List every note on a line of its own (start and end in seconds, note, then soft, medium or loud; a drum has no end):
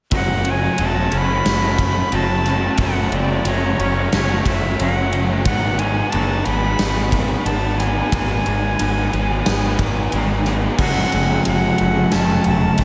0.11 0.67 F#1 medium
0.11 0.78 F#2 medium
0.11 0.78 C#3 medium
0.11 0.44 F#3 medium
0.11 0.45 A3 medium
0.11 0.46 C#4 medium
0.11 0.46 F#4 loud
0.11 kick loud
0.11 ride medium
0.15 0.52 F#5 loud
0.45 0.77 C#3 medium
0.45 0.63 F#3 medium
0.45 0.62 A3 medium
0.45 0.62 C#4 medium
0.45 0.61 F#4 medium
0.45 ride medium
0.50 0.87 G#5 medium
0.61 0.79 F#3 medium
0.61 0.80 A3 medium
0.61 0.80 C#4 medium
0.61 0.80 F#4 medium
0.78 1.07 E1 medium
0.78 2.11 F#2 medium
0.78 1.46 C#3 medium
0.78 1.11 F#3 medium
0.78 1.11 A3 medium
0.78 1.12 C#4 medium
0.78 1.13 F#4 medium
0.78 ride medium
0.85 1.19 A5 loud
0.94 1.12 F#3 medium
0.94 1.13 A3 medium
0.94 1.13 C#4 medium
1.11 1.40 F#1 medium
1.11 1.30 F#3 medium
1.11 1.28 A3 medium
1.11 1.28 C#4 medium
1.11 1.28 F#4 medium
1.11 muted overdriven electric guitar stroke soft
1.11 ride medium
1.17 2.16 B5 loud
1.29 1.63 F#3 medium
1.29 1.62 A3 medium
1.29 1.61 C#4 medium
1.29 1.61 F#4 medium
1.44 2.01 F#1 medium
1.44 3.12 A3 medium
1.44 snare loud
1.44 ride medium
1.61 1.76 F#3 medium
1.61 1.77 A3 medium
1.61 1.77 C#4 medium
1.61 1.79 F#4 medium
1.76 2.12 F#3 medium
1.76 2.12 A3 medium
1.76 2.11 C#4 medium
1.76 2.13 F#4 medium
1.76 kick medium
1.76 ride medium
2.11 2.68 F#1 medium
2.11 2.62 F#2 medium
2.11 2.63 C#3 medium
2.11 2.29 F#3 medium
2.11 2.27 A3 loud
2.11 2.27 C#4 loud
2.11 2.27 F#4 loud
2.11 2.81 A5 loud
2.11 ride medium
2.27 2.43 F#3 medium
2.27 2.43 A3 medium
2.27 2.43 C#4 medium
2.27 2.44 F#4 medium
2.43 2.78 C#3 medium
2.43 2.62 F#3 medium
2.43 2.61 A3 medium
2.43 2.60 C#4 medium
2.43 2.60 F#4 medium
2.43 snare soft
2.43 ride medium
2.60 2.78 F#3 medium
2.60 2.77 A3 medium
2.60 2.78 C#4 medium
2.60 2.79 F#4 medium
2.77 3.06 F#1 medium
2.77 3.43 F#2 medium
2.77 3.43 C#3 medium
2.77 3.11 F#3 medium
2.77 3.10 A3 medium
2.77 3.11 C#4 loud
2.77 3.12 F#4 loud
2.77 kick loud
2.77 ride medium
2.82 3.16 F#5 medium
3.11 3.40 F#1 medium
3.11 3.46 C#3 medium
3.11 3.29 F#3 medium
3.11 3.27 A3 medium
3.11 3.27 C#4 medium
3.11 3.27 F#4 medium
3.11 3.49 D5 medium
3.11 ride medium
3.27 3.44 F#3 medium
3.27 3.43 A3 medium
3.27 3.44 C#4 medium
3.27 3.46 F#4 medium
3.44 3.73 F#1 medium
3.44 4.12 F#2 medium
3.44 4.12 C#3 medium
3.44 3.78 F#3 medium
3.44 3.78 A3 medium
3.44 3.78 C#4 medium
3.44 3.79 F#4 loud
3.44 4.13 C#5 medium
3.44 ride medium
3.49 3.64 A3 loud
3.49 3.62 C#4 loud
3.63 3.80 F#3 medium
3.63 3.79 A3 medium
3.63 3.79 C#4 medium
3.79 4.07 F#1 medium
3.79 3.95 F#3 medium
3.79 3.94 A3 medium
3.79 3.94 C#4 medium
3.79 3.93 F#4 medium
3.79 muted overdriven electric guitar stroke soft
3.79 ride medium
3.94 4.29 F#3 medium
3.94 4.28 A3 medium
3.94 4.28 C#4 medium
3.94 4.28 F#4 medium
4.13 4.40 F#1 medium
4.13 5.46 A3 medium
4.13 4.44 C#5 medium
4.13 snare loud
4.13 ride medium
4.28 4.43 F#3 medium
4.28 4.44 A3 medium
4.28 4.43 C#4 medium
4.28 4.45 F#4 medium
4.44 4.73 F#1 medium
4.44 4.79 F#3 medium
4.44 4.79 A3 medium
4.44 4.79 C#4 medium
4.44 4.80 F#4 medium
4.44 4.82 E5 medium
4.44 kick medium
4.44 ride medium
4.79 5.45 F#1 medium
4.79 5.29 F#2 medium
4.79 5.30 C#3 medium
4.79 4.97 F#3 medium
4.79 4.95 A3 loud
4.79 4.95 C#4 medium
4.79 4.95 F#4 loud
4.79 5.30 F#5 medium
4.79 ride medium
4.95 5.13 F#3 medium
4.95 5.13 A3 medium
4.95 5.14 C#4 medium
4.95 5.15 F#4 medium
5.12 5.44 C#3 medium
5.12 5.31 F#3 medium
5.12 5.29 A3 medium
5.12 5.29 C#4 medium
5.12 5.29 F#4 medium
5.12 ride medium
5.29 5.46 F#3 medium
5.29 5.45 A3 medium
5.29 5.45 C#4 medium
5.29 5.46 F#4 medium
5.45 6.01 G#1 medium
5.45 6.12 G#2 medium
5.45 6.12 D#3 medium
5.45 5.79 F#3 medium
5.45 5.78 G#3 medium
5.45 5.79 B3 loud
5.45 5.79 D#4 loud
5.45 5.81 G#4 loud
5.45 5.80 F#5 loud
5.45 kick loud
5.45 ride medium
5.79 6.11 D#3 medium
5.79 6.12 F#3 medium
5.79 5.99 G#3 medium
5.79 5.97 B3 medium
5.79 5.97 D#4 medium
5.79 5.96 G#4 medium
5.79 6.11 G#5 loud
5.79 ride medium
5.97 6.13 G#3 medium
5.97 6.14 B3 medium
5.97 6.13 D#4 medium
5.97 6.15 G#4 medium
6.10 7.47 G#2 medium
6.10 6.80 D#3 medium
6.10 7.12 F#3 medium
6.10 6.45 G#3 medium
6.10 6.46 A5 medium
6.10 ride medium
6.14 6.41 F#1 medium
6.14 6.46 B3 medium
6.14 6.46 D#4 loud
6.14 6.47 G#4 loud
6.28 6.47 G#3 medium
6.28 6.47 B3 medium
6.28 6.46 D#4 medium
6.45 6.74 G#1 medium
6.45 6.64 G#3 medium
6.45 6.63 B3 medium
6.45 6.62 D#4 medium
6.45 6.62 G#4 medium
6.45 7.19 B5 loud
6.45 muted overdriven electric guitar stroke soft
6.45 ride medium
6.63 6.97 G#3 medium
6.63 6.97 B3 medium
6.63 6.96 D#4 medium
6.63 6.96 G#4 medium
6.79 7.34 G#1 medium
6.79 8.46 B3 medium
6.79 snare loud
6.79 ride medium
6.97 7.12 G#3 medium
6.97 7.12 B3 medium
6.97 7.13 D#4 medium
6.97 7.13 G#4 medium
7.12 7.44 F#3 medium
7.12 7.47 G#3 medium
7.12 7.47 B3 medium
7.12 7.47 D#4 medium
7.12 7.47 G#4 medium
7.12 kick medium
7.12 ride medium
7.45 8.01 G#1 medium
7.45 7.97 G#2 medium
7.45 7.97 D#3 medium
7.45 7.78 F#3 medium
7.45 7.64 G#3 medium
7.45 7.64 B3 medium
7.45 7.63 D#4 loud
7.45 7.62 G#4 loud
7.45 7.79 A5 medium
7.45 ride medium
7.64 7.78 G#3 medium
7.64 7.78 B3 medium
7.64 7.80 D#4 medium
7.64 7.80 G#4 medium
7.78 8.11 D#3 medium
7.78 8.11 F#3 medium
7.78 7.97 G#3 medium
7.78 7.97 B3 medium
7.78 7.97 D#4 medium
7.78 7.96 G#4 medium
7.78 10.12 G#5 medium
7.78 snare soft
7.78 ride medium
7.97 8.13 G#3 medium
7.97 8.13 B3 medium
7.97 8.14 D#4 medium
7.97 8.14 G#4 medium
8.12 8.40 G#1 loud
8.12 8.78 G#2 loud
8.12 8.79 D#3 medium
8.12 8.46 F#3 medium
8.12 8.44 G#3 medium
8.12 8.45 B3 medium
8.12 8.45 D#4 medium
8.12 8.46 G#4 medium
8.12 kick loud
8.12 ride medium
8.45 8.74 G#1 medium
8.45 8.78 D#3 medium
8.45 8.79 F#3 medium
8.45 8.64 G#3 medium
8.45 8.64 B3 medium
8.45 8.63 D#4 medium
8.45 8.62 G#4 medium
8.45 ride medium
8.63 8.79 G#3 medium
8.63 8.79 B3 medium
8.63 8.80 D#4 medium
8.63 8.80 G#4 medium
8.79 9.08 G#1 medium
8.79 9.46 G#2 medium
8.79 9.47 D#3 medium
8.79 9.79 F#3 medium
8.79 9.12 G#3 medium
8.79 9.12 B3 medium
8.79 9.13 D#4 loud
8.79 9.14 G#4 medium
8.79 ride medium
8.96 9.13 G#3 medium
8.96 9.13 B3 medium
8.96 9.13 D#4 medium
9.13 9.41 G#1 medium
9.13 9.31 G#3 medium
9.13 9.31 B3 medium
9.13 9.30 D#4 medium
9.13 9.29 G#4 medium
9.13 muted overdriven electric guitar stroke soft
9.13 ride medium
9.30 9.66 G#3 medium
9.30 9.64 B3 medium
9.30 9.65 D#4 medium
9.30 9.64 G#4 medium
9.46 9.74 G#1 medium
9.46 10.80 B3 medium
9.46 snare loud
9.46 ride medium
9.65 9.80 G#3 medium
9.65 9.81 B3 medium
9.65 9.81 D#4 medium
9.65 9.82 G#4 medium
9.79 10.07 G#1 medium
9.79 10.12 F#3 medium
9.79 10.14 G#3 medium
9.79 10.14 B3 medium
9.79 10.14 D#4 medium
9.79 kick medium
9.79 ride medium
9.83 10.14 G#4 medium
10.12 10.68 G#1 medium
10.12 10.63 G#2 medium
10.12 10.63 D#3 medium
10.12 10.45 F#3 medium
10.12 10.30 G#3 medium
10.12 10.30 B3 medium
10.12 10.28 D#4 medium
10.12 10.28 G#4 loud
10.12 ride medium
10.29 10.45 G#3 medium
10.29 10.45 B3 medium
10.29 10.46 D#4 medium
10.29 10.47 G#4 medium
10.45 10.77 D#3 medium
10.45 10.78 F#3 medium
10.45 10.63 G#3 medium
10.45 10.63 B3 medium
10.45 10.63 D#4 medium
10.45 10.62 G#4 medium
10.45 snare soft
10.45 ride medium
10.63 10.78 G#3 medium
10.63 10.78 B3 medium
10.63 10.78 D#4 medium
10.63 10.78 G#4 medium
10.78 11.03 F#1 medium
10.78 12.11 F#2 medium
10.78 11.46 C#3 loud
10.78 11.13 F#3 medium
10.78 11.13 A3 medium
10.78 11.12 C#4 medium
10.78 11.11 A4 loud
10.78 11.43 F#5 medium
10.78 kick loud
10.78 crash medium
11.11 11.38 F#1 medium
11.11 11.45 F#3 medium
11.11 11.45 A3 medium
11.11 11.45 C#4 medium
11.11 11.46 A4 medium
11.11 ride medium
11.45 11.71 F#1 medium
11.45 12.12 F#3 medium
11.45 12.11 A3 medium
11.45 12.12 C#4 medium
11.45 12.12 A4 medium
11.45 12.14 F#5 loud
11.45 ride medium
11.78 12.04 F#1 medium
11.78 12.84 A3 medium
11.78 ride medium
12.11 12.37 F#1 medium
12.11 12.84 F#2 medium
12.11 12.84 C#3 medium
12.11 12.77 F#3 medium
12.11 12.76 A3 medium
12.11 12.78 C#4 medium
12.11 12.78 A4 loud
12.11 12.46 A5 medium
12.11 snare loud
12.11 ride medium
12.44 12.70 E1 medium
12.44 12.84 F#3 medium
12.44 12.84 A5 medium
12.44 ride medium
12.77 12.84 F#1 medium
12.77 12.84 F#3 medium
12.77 12.84 A3 medium
12.77 12.84 C#4 medium
12.77 12.84 A4 medium
12.77 kick medium
12.77 ride medium